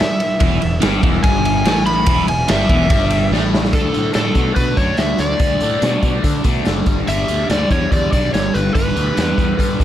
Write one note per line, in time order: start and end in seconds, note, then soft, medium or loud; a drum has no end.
0.00 1.00 E5 loud
0.00 snare loud
0.20 ride medium
0.40 0.61 E1 medium
0.40 0.61 E2 loud
0.40 0.61 E3 loud
0.40 kick loud
0.40 ride medium
0.62 0.82 E1 medium
0.62 0.79 E2 medium
0.62 ride medium
0.81 1.02 G1 medium
0.81 1.02 G2 loud
0.81 1.03 G3 loud
0.81 snare loud
0.81 ride loud
1.03 1.23 E1 medium
1.03 1.23 E2 medium
1.03 1.24 E3 medium
1.03 kick loud
1.03 ride medium
1.23 1.63 G1 medium
1.23 1.65 G2 medium
1.23 1.65 G3 loud
1.23 1.84 G#5 loud
1.23 kick loud
1.23 ride loud
1.45 ride medium
1.65 2.04 A1 medium
1.65 2.06 A2 medium
1.65 2.07 A3 medium
1.65 snare medium
1.65 ride medium
1.86 2.27 B5 loud
1.86 ride medium
2.06 2.26 E1 medium
2.06 2.27 E2 medium
2.06 2.27 E3 loud
2.06 kick loud
2.06 ride loud
2.28 2.48 E1 medium
2.28 2.45 E2 medium
2.28 2.49 G#5 medium
2.28 ride medium
2.48 2.69 G1 medium
2.48 2.69 G2 loud
2.48 2.69 G3 loud
2.48 3.29 E5 loud
2.48 snare loud
2.48 ride loud
2.69 2.89 E1 loud
2.69 2.90 E2 medium
2.69 2.90 E3 loud
2.69 kick loud
2.69 ride medium
2.90 3.29 G1 loud
2.90 3.32 G2 medium
2.90 3.32 G3 loud
2.90 kick loud
2.90 ride loud
3.10 ride medium
3.31 3.70 A1 loud
3.31 3.73 A2 medium
3.31 3.73 A3 medium
3.31 snare medium
3.54 snare medium
3.65 snare medium
3.73 3.88 D2 medium
3.73 3.93 D3 medium
3.73 3.94 A3 loud
3.73 3.94 D4 medium
3.73 4.13 A4 medium
3.73 kick loud
3.73 closed hi-hat medium
3.93 4.09 A2 medium
3.93 4.14 D3 medium
3.93 4.14 A3 medium
3.93 4.14 D4 medium
3.93 closed hi-hat soft
4.14 4.30 A2 medium
4.14 4.35 D3 medium
4.14 4.35 A3 medium
4.14 4.37 D4 loud
4.14 4.55 A4 medium
4.14 snare loud
4.14 closed hi-hat medium
4.35 4.50 B2 medium
4.35 4.55 D3 medium
4.35 4.56 A3 medium
4.35 4.57 D4 medium
4.35 kick medium
4.35 closed hi-hat medium
4.55 4.72 B2 medium
4.55 4.77 D3 medium
4.55 4.77 A3 medium
4.55 4.78 D4 loud
4.55 4.78 B4 medium
4.55 kick medium
4.55 closed hi-hat medium
4.77 4.92 F#2 medium
4.77 4.97 D3 medium
4.77 4.97 A3 medium
4.77 4.99 D4 medium
4.77 4.99 C#5 medium
4.77 kick medium
4.77 closed hi-hat medium
4.97 5.13 D2 medium
4.97 5.18 D3 medium
4.97 5.19 A3 medium
4.97 5.19 D4 medium
4.97 5.20 E5 medium
4.97 snare loud
4.97 closed hi-hat medium
5.19 5.34 D2 medium
5.19 5.39 D3 medium
5.19 5.39 A3 medium
5.19 5.40 D4 medium
5.19 6.41 D5 medium
5.19 closed hi-hat medium
5.40 5.55 D2 medium
5.40 5.61 D3 medium
5.40 5.61 A3 medium
5.40 5.63 D4 loud
5.40 kick loud
5.40 closed hi-hat medium
5.60 5.76 A2 medium
5.60 5.82 D3 medium
5.60 5.82 A3 medium
5.60 5.84 D4 medium
5.60 closed hi-hat medium
5.82 5.97 B2 medium
5.82 6.02 D3 medium
5.82 6.03 A3 medium
5.82 6.04 D4 medium
5.82 snare loud
5.82 closed hi-hat medium
6.02 6.18 B2 medium
6.02 6.23 D3 medium
6.02 6.23 A3 medium
6.02 6.24 D4 medium
6.02 kick medium
6.02 closed hi-hat medium
6.24 6.44 D3 medium
6.24 6.39 D3 medium
6.24 6.44 A3 medium
6.24 6.46 D4 medium
6.24 kick medium
6.24 closed hi-hat medium
6.44 6.59 B2 medium
6.44 6.65 D3 medium
6.44 6.65 A3 medium
6.44 6.66 D4 medium
6.44 kick medium
6.44 closed hi-hat medium
6.65 6.81 F#1 medium
6.65 6.85 D3 medium
6.65 6.86 A3 medium
6.65 9.84 D4 medium
6.65 snare medium
6.65 closed hi-hat medium
6.86 7.01 G1 medium
6.86 7.07 G2 medium
6.86 7.07 D3 medium
6.86 7.09 G3 loud
6.86 kick medium
6.86 closed hi-hat medium
7.08 7.23 G1 medium
7.08 7.28 G2 medium
7.08 7.28 D3 medium
7.08 7.29 G3 loud
7.08 7.47 E5 loud
7.08 closed hi-hat medium
7.28 7.44 D2 medium
7.28 7.49 G2 medium
7.28 7.49 D3 medium
7.28 7.50 G3 medium
7.28 closed hi-hat medium
7.50 7.64 D2 medium
7.50 7.69 G2 medium
7.50 7.69 D3 medium
7.50 7.69 G3 medium
7.50 7.70 D5 medium
7.50 snare loud
7.50 closed hi-hat medium
7.70 7.86 E2 medium
7.70 7.90 G2 medium
7.70 7.90 D3 medium
7.70 7.92 G3 medium
7.70 7.91 C#5 medium
7.70 kick medium
7.70 closed hi-hat medium
7.91 8.06 E2 medium
7.91 8.11 G2 medium
7.91 8.11 D3 loud
7.91 8.12 G3 medium
7.91 8.12 D5 medium
7.91 kick medium
7.91 closed hi-hat medium
8.12 8.28 B1 medium
8.12 8.32 G2 medium
8.12 8.33 D3 medium
8.12 8.34 G3 medium
8.12 8.32 D5 loud
8.12 kick medium
8.12 closed hi-hat medium
8.33 8.49 G1 medium
8.33 8.53 G2 medium
8.33 8.53 D3 medium
8.33 8.53 G3 medium
8.33 8.55 C#5 medium
8.33 snare loud
8.33 closed hi-hat medium
8.54 8.69 G1 medium
8.54 8.73 G2 medium
8.54 8.74 D3 medium
8.54 8.74 G3 medium
8.54 8.73 B4 medium
8.54 closed hi-hat soft
8.74 8.90 G1 medium
8.74 8.95 G2 medium
8.74 8.95 D3 loud
8.74 8.95 G3 medium
8.74 9.84 B4 medium
8.74 kick loud
8.74 closed hi-hat medium
8.88 snare soft
8.96 9.11 D2 medium
8.96 9.15 G2 medium
8.96 9.16 D3 medium
8.96 9.16 G3 loud
8.96 closed hi-hat medium
9.17 9.32 E2 medium
9.17 9.37 G2 medium
9.17 9.38 D3 medium
9.17 9.38 G3 loud
9.17 snare loud
9.17 closed hi-hat medium
9.38 9.53 E2 medium
9.38 9.57 G2 medium
9.38 9.57 D3 medium
9.38 9.58 G3 medium
9.38 kick medium
9.38 closed hi-hat medium
9.58 9.79 G2 medium
9.58 9.74 G2 medium
9.58 9.79 D3 medium
9.58 9.79 G3 medium
9.58 kick medium
9.58 closed hi-hat medium
9.80 9.84 E2 medium
9.80 9.84 G2 medium
9.80 9.84 D3 medium
9.80 9.84 G3 medium
9.80 kick medium
9.80 closed hi-hat medium